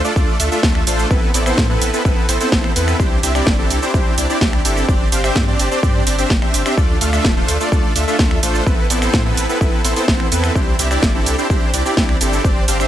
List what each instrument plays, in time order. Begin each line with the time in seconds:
0.04 supersaw synth A3 D4 F4 A4 D5, shaker
0.16 sub bass D2, supersaw synth A3 D4 F4 A4 D5, kick, shaker
0.40 sub bass D2, supersaw synth A3 D4 F4 A4 E5, open hi-hat, ride, shaker
0.52 supersaw synth A3 D4 F4 A4 E5, shaker
0.63 sub bass D2, supersaw synth A3 D4 A4, kick, snare, shaker
0.75 finger snap
0.87 sub bass A1, supersaw synth A3 D4 F4 A4 C5, open hi-hat, ride, shaker
0.99 shaker
1.11 sub bass A1, supersaw synth B3 C4 E4 A4 B4, kick, shaker
1.34 sub bass A1, supersaw synth B3 C4 E4 A4 D5, open hi-hat, ride, shaker
1.46 supersaw synth B3 C4 E4 A4 C5, finger snap, shaker
1.58 sub bass A2, kick, snare, shaker
1.70 supersaw synth B3 C4 E4 A4 B4
1.82 sub bass A1, open hi-hat, ride, shaker
1.93 supersaw synth B3 C4 E4 A4 B4, shaker
2.05 sub bass A1, supersaw synth B3 C4 E4 A4 B4, kick, shaker
2.29 sub bass A1, supersaw synth B3 C4 E4 A4 C5, open hi-hat, ride, shaker
2.40 supersaw synth B3 C4 E4 A4 C5, open hi-hat, shaker
2.52 sub bass A1, supersaw synth A4, kick, snare, shaker
2.64 finger snap
2.76 sub bass E2, supersaw synth B3 C4 E4 A4 B4, open hi-hat, ride, shaker
2.88 finger snap, shaker
3.00 sub bass C2, supersaw synth C4 D4 E4 G4 C5, kick, shaker
3.23 sub bass C2, supersaw synth C4 D4 E4 G4 E5, open hi-hat, ride, shaker
3.35 supersaw synth C4 D4 E4 G4 D5, finger snap, shaker
3.47 sub bass G1, kick, snare, shaker
3.59 supersaw synth C4 D4 E4 G4 A4
3.70 sub bass C2, open hi-hat, ride, shaker
3.82 supersaw synth C4 D4 E4 G4 C5, shaker
3.94 sub bass C2, supersaw synth D4 E4, kick, shaker
4.18 sub bass C2, supersaw synth C4 D4 E4 G4 D5, open hi-hat, ride, shaker
4.29 supersaw synth C4 D4 E4 G4 D5, shaker
4.41 sub bass C2, supersaw synth C4 E4 G4, kick, snare, shaker
4.53 finger snap
4.65 sub bass G1, supersaw synth C4 D4 E4 G4 A4, open hi-hat, ride, shaker
4.77 shaker
4.89 sub bass G1, supersaw synth D4 G4 D5, kick, shaker
5.12 sub bass G1, supersaw synth C4 D4 G4 C5 F5, open hi-hat, ride, shaker
5.24 supersaw synth C4 D4 G4 C5 E5, finger snap, shaker
5.36 sub bass G2, kick, snare, shaker
5.48 supersaw synth C4 D4 G4 C5 D5
5.59 sub bass G1, open hi-hat, ride, shaker
5.71 supersaw synth C4 D4 G4 C5 D5, shaker
5.83 sub bass G2, supersaw synth C4 D4 G4 C5 D5, kick, shaker
6.07 sub bass G1, supersaw synth C4 D4 G4 C5 D5, open hi-hat, ride, shaker
6.18 supersaw synth C4 D4 G4 C5 E5, open hi-hat, shaker
6.30 sub bass G1, kick, snare, shaker
6.42 supersaw synth C4 D4 G4 C5 E5, finger snap
6.54 sub bass G1, open hi-hat, ride, shaker
6.66 supersaw synth C4 D4 G4 C5 E5, finger snap, shaker
6.78 sub bass D2, supersaw synth A3 D4 F4 A4 D5, kick, shaker
7.01 sub bass D2, supersaw synth A3 D4 F4 A4 F5, open hi-hat, ride, shaker
7.13 supersaw synth A3 D4 F4 A4 E5, finger snap, shaker
7.25 sub bass D1, kick, snare, shaker
7.37 supersaw synth A3 D4 F4 A4 C5
7.48 sub bass D2, open hi-hat, ride, shaker
7.60 supersaw synth A3 D4 F4 A4 D5, shaker
7.72 sub bass D2, supersaw synth A3 D4 F4 A4 D5, kick, shaker
7.96 sub bass D2, supersaw synth A3 D4 F4 A4 E5, open hi-hat, ride, shaker
8.07 supersaw synth A3 D4 F4 A4 E5, shaker
8.19 sub bass D2, supersaw synth A3 D4, kick, snare, shaker
8.31 finger snap
8.43 sub bass A1, supersaw synth A3 D4 F4 A4 C5, open hi-hat, ride, shaker
8.55 shaker
8.67 sub bass A1, supersaw synth B3 C4 E4 A4 B4, kick, shaker
8.90 sub bass A1, supersaw synth B3 C4 E4 A4 D5, open hi-hat, ride, shaker
9.02 supersaw synth B3 C4 E4 A4 C5, finger snap, shaker
9.14 sub bass A2, kick, snare, shaker
9.26 supersaw synth B3 C4 E4 A4 B4
9.37 sub bass A1, open hi-hat, ride, shaker
9.49 supersaw synth B3 C4 E4 A4 B4, shaker
9.61 sub bass A1, supersaw synth C4 E4 A4 B4, kick, shaker
9.85 sub bass A1, supersaw synth B3 C4 E4 A4 C5, open hi-hat, ride, shaker
9.96 supersaw synth B3 C4 E4 A4 C5, open hi-hat, shaker
10.08 sub bass A1, supersaw synth B3 C4 E4 C5, kick, snare, shaker
10.20 finger snap
10.32 sub bass E2, supersaw synth B3 C4 E4 A4 B4, open hi-hat, ride, shaker
10.44 finger snap, shaker
10.55 sub bass C2, supersaw synth C4 D4 E4 G4 C5, kick, shaker
10.79 sub bass C2, supersaw synth C4 D4 E4 G4 E5, open hi-hat, ride, shaker
10.91 supersaw synth C4 D4 E4 G4 D5, finger snap, shaker
11.03 sub bass G1, kick, snare, shaker
11.15 supersaw synth C4 D4 E4 G4 A4
11.26 sub bass C2, open hi-hat, ride, shaker
11.38 supersaw synth C4 D4 E4 G4 C5, shaker
11.50 sub bass C2, kick, shaker
11.74 sub bass C2, supersaw synth C4 D4 E4 G4 D5, open hi-hat, ride, shaker
11.85 supersaw synth C4 D4 E4 G4 D5, shaker
11.97 sub bass C2, supersaw synth C4 D4 E4 G4, kick, snare, shaker
12.09 finger snap
12.21 sub bass G1, supersaw synth C4 D4 E4 G4 A4, open hi-hat, ride, shaker
12.33 shaker
12.45 sub bass G1, supersaw synth C4 D4 G4 C5 D5, kick, shaker
12.68 sub bass G1, supersaw synth C4 D4 G4 C5 F5, open hi-hat, ride, shaker
12.80 supersaw synth C4 D4 G4 C5 E5, finger snap, shaker